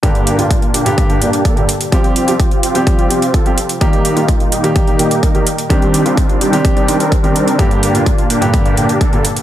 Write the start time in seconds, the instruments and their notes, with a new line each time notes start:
0.03 grand piano G2 D3 G3 A#3 G4, analog synth pad A#2 D3 G3 D4 G4, supersaw synth A#3 D4 G4, kick, closed hi-hat
0.15 closed hi-hat
0.27 closed hi-hat
0.38 grand piano G2 D3 G3 A#3 G4, supersaw synth A#3 D4 F4, closed hi-hat
0.51 kick, closed hi-hat
0.62 closed hi-hat
0.74 supersaw synth A#3 D4 G4, closed hi-hat
0.85 grand piano G2 D3 G3 A#3 G4, closed hi-hat
0.98 kick, closed hi-hat
1.09 supersaw synth A#3 D4 G4, closed hi-hat
1.21 grand piano G2 D3 G3 A#3 G4, closed hi-hat
1.33 closed hi-hat
1.45 supersaw synth A#3 D4 A4, kick, closed hi-hat
1.56 grand piano G2 D3 G3 A#3 G4, closed hi-hat
1.69 closed hi-hat
1.81 closed hi-hat
1.92 analog synth pad C3 F3 F4, grand piano F3 G3 C4 G4, supersaw synth C4 F4 G4, kick, closed hi-hat
2.04 closed hi-hat
2.16 closed hi-hat
2.27 grand piano F3 G3 C4 G4, supersaw synth C4 F4 G4, closed hi-hat
2.40 kick, closed hi-hat
2.51 closed hi-hat
2.63 supersaw synth C4 F4 G4, closed hi-hat
2.74 grand piano F3 G3 C4 G4, closed hi-hat
2.87 kick, closed hi-hat
2.98 supersaw synth C4 F4 G4, closed hi-hat
3.10 grand piano F3 G3 C4 G4, closed hi-hat
3.22 closed hi-hat
3.34 supersaw synth C4 F4 A4, kick, closed hi-hat
3.45 grand piano F3 G3 C4 G4, closed hi-hat
3.58 closed hi-hat
3.69 closed hi-hat
3.81 analog synth pad A#2 D#3 D#4, grand piano D#3 G3 A#3 G4, supersaw synth A#3 D#4 G4, kick, closed hi-hat
3.93 closed hi-hat
4.05 closed hi-hat
4.16 grand piano D#3 G3 A#3 G4, supersaw synth A#3 D#4 F4, closed hi-hat
4.28 kick, closed hi-hat
4.40 closed hi-hat
4.52 supersaw synth A#3 D#4 G4, closed hi-hat
4.63 grand piano D#3 G3 A#3 G4, closed hi-hat
4.76 kick, closed hi-hat
4.87 supersaw synth A#3 D#4 G4, closed hi-hat
4.99 grand piano D#3 G3 A#3 G4, closed hi-hat
5.11 closed hi-hat
5.23 supersaw synth A#3 D#4 A#4, kick, closed hi-hat
5.34 grand piano D#3 G3 A#3 G4, closed hi-hat
5.47 closed hi-hat
5.58 closed hi-hat
5.69 analog synth pad C3 D4, grand piano D#3 C4 D4 G4, supersaw synth D#3 G3 C4 D4 G4, kick, closed hi-hat
5.82 closed hi-hat
5.94 closed hi-hat
6.05 grand piano D#3 C4 D4 G4, supersaw synth D#3 G3 C4 D4 F4, closed hi-hat
6.17 kick, closed hi-hat
6.29 closed hi-hat
6.41 supersaw synth D#3 G3 C4 D4 G4, closed hi-hat
6.52 grand piano D#3 C4 D4 G4, closed hi-hat
6.65 kick, closed hi-hat
6.76 supersaw synth D#3 G3 C4 D4 G4, closed hi-hat
6.88 grand piano D#3 C4 D4 G4, closed hi-hat
7.00 supersaw synth D#3 G3 C4 D4 A#4, closed hi-hat
7.12 kick, closed hi-hat
7.23 grand piano D#3 C4 D4 G4, supersaw synth D#3 G3 C4 D4 A#4, closed hi-hat
7.36 closed hi-hat
7.48 closed hi-hat
7.59 grand piano G2 D3 G3 A#3 G4, analog synth pad A#2 D3, supersaw synth A#3 D4 G4, kick, closed hi-hat
7.71 closed hi-hat
7.83 closed hi-hat
7.94 grand piano G2 D3 G3 A#3 G4, supersaw synth A#3 D4 F4, closed hi-hat
8.06 kick, closed hi-hat
8.18 closed hi-hat
8.30 supersaw synth A#3 D4 G4, closed hi-hat
8.41 grand piano G2 D3 G3 A#3 G4, closed hi-hat
8.54 kick, closed hi-hat
8.65 supersaw synth A#3 D4 G4, closed hi-hat
8.77 grand piano G2 D3 G3 A#3 G4, closed hi-hat
8.89 closed hi-hat
9.01 supersaw synth A#3 D4 A4, kick, closed hi-hat
9.12 grand piano G2 D3 G3 A#3 G4, closed hi-hat
9.25 closed hi-hat
9.36 closed hi-hat